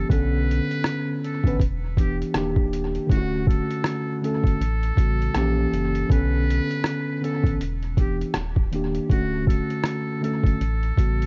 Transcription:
0.00 0.12 E3 medium
0.00 0.11 A#3 medium
0.00 0.12 C#4 medium
0.00 0.12 G4 medium
0.09 0.60 B1 loud
0.09 1.24 D3 loud
0.09 1.25 B3 medium
0.09 1.26 C#4 medium
0.09 1.26 A4 medium
0.09 1.19 B4 loud
0.09 kick loud
0.09 closed hi-hat medium
0.51 closed hi-hat medium
0.71 closed hi-hat soft
0.84 cross-stick loud
0.84 closed hi-hat medium
1.24 1.57 A4 medium
1.24 closed hi-hat medium
1.44 1.57 A1 medium
1.44 1.60 D3 medium
1.44 1.60 B3 medium
1.44 1.61 C#4 medium
1.44 1.61 B4 loud
1.44 kick medium
1.44 closed hi-hat soft
1.60 2.23 E1 medium
1.60 kick medium
1.60 closed hi-hat medium
1.97 2.34 E3 medium
1.97 2.35 B3 medium
1.97 2.35 D4 medium
1.97 2.18 G4 medium
1.97 2.36 G4 medium
1.97 kick medium
1.97 closed hi-hat medium
2.22 closed hi-hat soft
2.34 2.98 D#1 medium
2.34 3.01 D#3 medium
2.34 3.02 A#3 medium
2.34 3.02 D4 medium
2.34 3.03 G4 medium
2.34 cross-stick loud
2.34 closed hi-hat medium
2.56 kick medium
2.73 closed hi-hat medium
2.95 closed hi-hat soft
3.07 3.60 D1 loud
3.07 4.09 D3 medium
3.07 4.10 A3 medium
3.07 4.10 C#4 medium
3.07 3.18 E4 medium
3.07 kick loud
3.11 3.45 F#4 loud
3.11 closed hi-hat medium
3.17 4.14 F#4 loud
3.47 4.19 A4 medium
3.47 kick loud
3.47 closed hi-hat medium
3.71 closed hi-hat soft
3.84 cross-stick loud
3.84 closed hi-hat loud
4.21 4.59 D3 medium
4.21 4.60 A3 medium
4.21 4.60 C#4 medium
4.21 6.07 A4 medium
4.21 4.61 A4 medium
4.21 closed hi-hat medium
4.44 4.57 F#1 medium
4.44 kick medium
4.44 closed hi-hat soft
4.60 4.92 A1 loud
4.60 closed hi-hat medium
4.83 closed hi-hat soft
4.96 5.29 A1 loud
4.96 5.34 C#3 medium
4.96 5.35 G3 medium
4.96 5.35 B3 medium
4.96 5.36 F#4 medium
4.96 kick medium
4.96 closed hi-hat medium
5.22 closed hi-hat soft
5.34 5.67 A#1 medium
5.34 6.01 E3 medium
5.34 6.02 A#3 medium
5.34 6.03 C#4 medium
5.34 cross-stick loud
5.34 closed hi-hat medium
5.38 6.03 G4 loud
5.73 6.04 F#1 medium
5.73 closed hi-hat medium
5.95 closed hi-hat soft
6.08 6.60 B1 loud
6.08 7.09 D3 medium
6.08 7.10 B3 medium
6.08 7.11 C#4 medium
6.08 7.11 A4 loud
6.08 kick loud
6.08 closed hi-hat medium
6.12 7.19 B4 loud
6.51 closed hi-hat medium
6.71 closed hi-hat soft
6.84 cross-stick loud
6.84 closed hi-hat medium
7.21 7.59 D3 medium
7.21 7.60 B3 medium
7.21 7.60 C#4 medium
7.21 7.57 A4 medium
7.21 7.61 A4 medium
7.21 closed hi-hat medium
7.44 7.57 A1 medium
7.44 kick medium
7.44 closed hi-hat soft
7.61 8.24 E1 medium
7.61 closed hi-hat medium
7.82 closed hi-hat soft
7.97 8.35 E3 medium
7.97 8.35 B3 medium
7.97 8.36 D4 medium
7.97 8.18 G4 medium
7.97 8.37 G4 medium
7.97 kick medium
7.97 closed hi-hat medium
8.21 closed hi-hat soft
8.34 8.99 D#1 loud
8.34 cross-stick loud
8.34 closed hi-hat medium
8.56 kick medium
8.72 9.05 D#3 medium
8.72 9.06 A#3 medium
8.72 9.07 D4 medium
8.72 9.07 G4 medium
8.72 closed hi-hat medium
8.95 closed hi-hat soft
9.10 9.60 D1 loud
9.10 10.10 D3 medium
9.10 10.11 A3 medium
9.10 10.11 C#4 medium
9.10 9.44 F#4 loud
9.10 10.12 F#4 medium
9.10 kick loud
9.10 closed hi-hat medium
9.47 10.19 A4 medium
9.47 kick medium
9.47 closed hi-hat medium
9.70 closed hi-hat soft
9.83 cross-stick loud
9.83 closed hi-hat medium
10.21 10.59 D3 medium
10.21 10.60 A3 medium
10.21 10.60 C#4 medium
10.21 11.26 A4 medium
10.21 10.61 A4 medium
10.21 closed hi-hat medium
10.43 10.57 F#1 medium
10.43 kick loud
10.43 closed hi-hat soft
10.60 10.92 A1 loud
10.60 closed hi-hat medium
10.83 closed hi-hat soft
10.96 11.26 A1 medium
10.96 11.26 C#3 medium
10.96 11.26 G3 soft
10.96 11.26 B3 medium
10.96 11.26 F#4 medium
10.96 kick medium
10.96 closed hi-hat medium
11.22 closed hi-hat soft

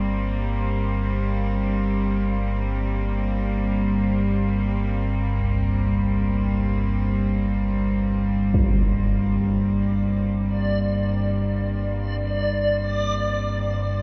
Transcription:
0.00 14.02 G1 medium
0.00 14.02 G2 medium
0.00 14.02 G3 medium
0.00 14.02 A#3 medium
0.00 14.02 C4 medium
0.00 1.18 G4 medium
5.39 11.70 C2 soft
8.54 14.02 D5 medium
8.54 impact medium

